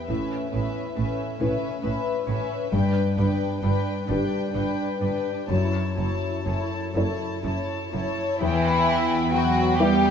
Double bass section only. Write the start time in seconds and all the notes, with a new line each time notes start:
0.10 A1
0.55 A1
0.98 A1
1.42 A1
1.85 A1
2.28 A1
2.73 G1
3.19 G1
3.64 G1
4.10 G1
4.56 G1
5.03 G1
5.51 F#1
5.99 F#1
6.47 F#1
6.97 F#1
7.46 F#1
7.95 F#1
8.43 E2